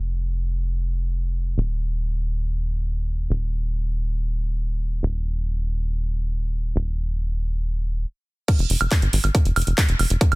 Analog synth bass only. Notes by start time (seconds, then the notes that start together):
Already playing: F1
1.58 D#1
3.30 D#1
5.03 D#1
6.76 D#1
8.59 F1
8.70 F1
8.81 F1
9.02 G#1
9.13 G#1
9.24 G#1
9.45 F1
9.56 F1
9.67 F1
9.89 F1
9.99 F1
10.10 F1
10.32 F1